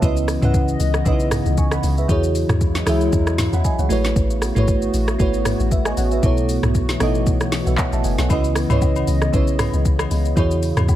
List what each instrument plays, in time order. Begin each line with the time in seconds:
Already playing: analog synth pad B3, fm electric piano E5 A5
0.01 log drum bass C#2, fm electric piano C#3 C#4 E4 B4 D#5, analog synth pad C#3 E3 D#5, kick, shaker
0.17 shaker
0.28 cross-stick, open hi-hat, shaker
0.41 log drum bass C#2, fm electric piano C#3 C#4 E4 B4 F#5, mid tom, shaker
0.54 kick, shaker
0.68 shaker
0.80 log drum bass C#2, open hi-hat, shaker
0.94 cross-stick, shaker
1.05 log drum bass B1, fm electric piano C#3 C#4 D#4 B4 D#5, kick, shaker
1.13 fm electric piano E4
1.20 shaker
1.31 cross-stick, mid tom, open hi-hat, shaker
1.46 log drum bass C#2, shaker
1.57 fm electric piano G#5 C#6, kick, shaker
1.71 fm electric piano F#5 B5, cross-stick, shaker
1.83 log drum bass C#2, open hi-hat, shaker
1.97 fm electric piano B4 E5, shaker
2.08 log drum bass E2, fm electric piano E3 E4 F#4 G#4 C#5, analog synth pad F#3 G#3 E4, kick, shaker
2.23 shaker
2.35 open hi-hat, shaker
2.49 log drum bass E2, cross-stick, mid tom, shaker
2.61 kick, shaker
2.75 snare, shaker
2.86 log drum bass C#2, fm electric piano E3 E4 F#4 G#4 E5, cross-stick, open hi-hat, shaker
3.01 shaker
3.12 log drum bass E2, kick, shaker
3.27 cross-stick, shaker
3.38 snare, mid tom, open hi-hat, shaker
3.53 log drum bass E2, fm electric piano F#5 B5, shaker
3.64 fm electric piano D#5 G#5, kick, shaker
3.79 log drum bass C#2, fm electric piano C#5 F#5, shaker
3.89 log drum bass A1, fm electric piano A3 E4 F#4 B4 C#5, analog synth pad A3 B3 F#4, open hi-hat, shaker
4.04 snare, shaker
4.16 log drum bass A1, kick, shaker
4.30 shaker
4.42 cross-stick, open hi-hat, shaker
4.55 log drum bass A1, fm electric piano A3 E4 F#4 B4 C#5, mid tom, shaker
4.68 kick, shaker
4.82 shaker
4.94 log drum bass A1, open hi-hat, shaker
5.08 cross-stick, shaker
5.18 log drum bass G#1, fm electric piano A3 E4 F#4 B4 C#5, kick, shaker
5.34 shaker
5.45 cross-stick, mid tom, open hi-hat, shaker
5.60 log drum bass A1, shaker
5.71 fm electric piano B4 E5, kick, shaker
5.85 fm electric piano D#5 G#5, cross-stick, shaker
5.97 log drum bass A1, fm electric piano C#5 F#5, open hi-hat, shaker
6.11 fm electric piano B4 E5, shaker
6.22 log drum bass B1, fm electric piano B2 B3 E4 A4 C#5, analog synth pad E3, kick, shaker
6.37 shaker
6.49 open hi-hat, shaker
6.63 log drum bass B1, cross-stick, mid tom, shaker
6.75 kick, shaker
6.89 snare, shaker
7.00 log drum bass A1, fm electric piano B2 B3 D#4 A4 D#5, cross-stick, open hi-hat, shaker
7.07 fm electric piano E4
7.15 shaker
7.26 log drum bass B1, kick, shaker
7.40 cross-stick, shaker
7.52 snare, open hi-hat, shaker
7.67 log drum bass B1, fm electric piano B4 E5, shaker
7.78 fm electric piano C#5 F#5, kick, clap, shaker
7.93 log drum bass A1, fm electric piano E5 A5, shaker
8.04 log drum bass F#1, fm electric piano D#5 G#5, open hi-hat, shaker
8.18 log drum bass B1, fm electric piano C#5 F#5, snare, shaker
8.29 log drum bass C#2, fm electric piano C#3 C#4 E4 B4 D#5, analog synth pad C#3 D#5, kick, high agogo, shaker
8.44 shaker
8.55 cross-stick, open hi-hat, shaker
8.69 log drum bass C#2, fm electric piano C#3 C#4 E4 B4 C#5, mid tom, high agogo, shaker
8.82 kick, low woodblock, shaker
8.96 high agogo, shaker
9.07 log drum bass C#2, open hi-hat, shaker
9.22 cross-stick, shaker
9.32 log drum bass B1, fm electric piano C#3 C#4 E4 B4 C#5, kick, shaker
9.47 shaker
9.59 cross-stick, mid tom, open hi-hat, high agogo, shaker
9.73 log drum bass C#2, shaker
9.85 kick, shaker
9.99 cross-stick, high agogo, shaker
10.11 log drum bass C#2, open hi-hat, shaker
10.25 shaker
10.36 log drum bass E2, fm electric piano E3 E4 F#4 G#4 C#5, analog synth pad F#3 G#3 E4, kick, high agogo, shaker
10.51 shaker
10.63 open hi-hat, shaker
10.77 log drum bass E2, cross-stick, mid tom, high agogo, shaker
10.88 kick, low woodblock, shaker